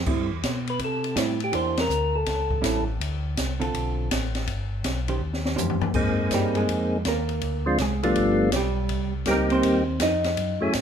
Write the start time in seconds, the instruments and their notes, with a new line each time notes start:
0.06 tonewheel organ A2, hollow-body jazz guitar G3 C4 E4, kick, crash
0.19 tonewheel organ G2
0.32 tonewheel organ E2
0.43 tonewheel organ B2, kick, snare, hi-hat pedal, ride
0.67 tonewheel organ B4, ride
0.79 tonewheel organ C3, kick, ride
0.84 tonewheel organ A4
1.04 ride
1.16 tonewheel organ A2, hollow-body jazz guitar G3 C4 E4, kick, snare, hi-hat pedal, ride
1.40 tonewheel organ G4, ride
1.52 tonewheel organ E2 C5, hollow-body jazz guitar E3 A#3 D4 G4, kick, ride
1.77 tonewheel organ A#4, snare, ride
1.89 tonewheel organ D2, hi-hat pedal
2.15 tonewheel organ A4
2.26 tonewheel organ C#2, kick, snare, ride
2.50 kick
2.62 tonewheel organ A1, hollow-body jazz guitar G3 C#4 E4, kick, snare, hi-hat pedal, ride
3.00 tonewheel organ D2, kick, ride
3.37 tonewheel organ C2, kick, snare, hi-hat pedal, ride
3.60 hollow-body jazz guitar D3 C4 F4 A4, ride
3.74 tonewheel organ B1, kick, ride
4.11 tonewheel organ A1, kick, snare, hi-hat pedal, ride
4.35 snare, ride
4.47 tonewheel organ G1, kick, ride
4.84 tonewheel organ B1, kick, snare, hi-hat pedal, ride
5.08 hollow-body jazz guitar D#3 C#4 G4 C5, ride
5.21 tonewheel organ D#2
5.33 snare
5.45 snare
5.56 tonewheel organ F2, hollow-body jazz guitar D#3 C#4 G4 C5, floor tom, hi-hat pedal
5.70 floor tom
5.81 tonewheel organ F2, floor tom
5.94 tonewheel organ G#2 A#3 C4 D#4 G#4, kick, crash
6.31 tonewheel organ G2, hollow-body jazz guitar G3 G4, kick, snare, hi-hat pedal, ride
6.55 hollow-body jazz guitar G#3 G#4, ride
6.68 tonewheel organ F2, kick, ride
7.05 tonewheel organ D#2, hollow-body jazz guitar A#3 A#4, kick, snare, hi-hat pedal, ride
7.29 ride
7.41 tonewheel organ D2, kick, ride
7.66 tonewheel organ F3 G#3 C4 D4 F4
7.78 tonewheel organ C2, hollow-body jazz guitar G#3 G#4, kick, snare, hi-hat pedal, ride
8.03 hollow-body jazz guitar F3 F4, tonewheel organ G3 A3 B3 D4 F4, ride
8.16 tonewheel organ G1, kick, ride
8.52 tonewheel organ B1, hollow-body jazz guitar G3, kick, snare, hi-hat pedal, ride
8.56 hollow-body jazz guitar G4
8.89 tonewheel organ C2, kick, ride
9.26 tonewheel organ C#2 G3 A#3 C4 D#4 G4, kick, snare, hi-hat pedal, ride
9.30 hollow-body jazz guitar A#3 A#4
9.50 hollow-body jazz guitar C4 C5, ride
9.63 tonewheel organ D#2, kick, ride
10.00 tonewheel organ F2, hollow-body jazz guitar D#4 D#5, kick, snare, hi-hat pedal, ride
10.24 snare, ride
10.37 tonewheel organ F#2, kick, ride
10.61 tonewheel organ F#2 F#3 A3 C#4 E4 G#4
10.73 tonewheel organ A2, kick, snare, hi-hat pedal, ride